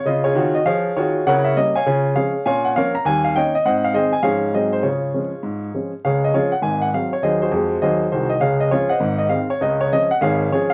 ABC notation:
X:1
M:4/4
L:1/8
Q:"Swing" 1/4=201
K:Db
V:1 name="Upright piano"
e [FAd]2 e [Adf]2 [FAd]2 | [Bdg] _f e [d=fa]3 [Adf]2 | [dfa] g [Bdf] b a f [de=g] e | [ceg] f [Ace] a [Adf]2 [Ace] c |
[FAd]6- [FAd] z | [Adf] e [FAd] g a g f d | [Ace] [GAc]3 [Ace]2 [GAc] e | [Adf] e [FAd] [ceg]2 e f d |
e d e g [Adf]2 [FAd] f |]
V:2 name="Upright piano" clef=bass
[D,F]2 [E,G]2 F,2 [E,G]2 | [D,_F]2 [=G,B,D]2 [D,=F]2 [F,A,D]2 | [B,,D]2 [F,B,D]2 [E,,=G,]2 [E,B,D]2 | [A,,C]2 [E,A,C]2 [A,,F,A,D]2 [A,,G,A,C]2 |
D,2 [F,A,D]2 A,,2 [F,A,D]2 | [D,,D,]2 [F,A,D]2 [A,,,A,,]2 [G,A,C]2 | [E,,G,]2 [F,,A,]2 [E,,G,]2 [C,,E,]2 | [D,,D,]2 [F,A,D]2 [A,,,A,,]2 [E,A,C]2 |
[D,,D,]2 [F,A,D]2 [A,,,A,,]2 [F,A,D]2 |]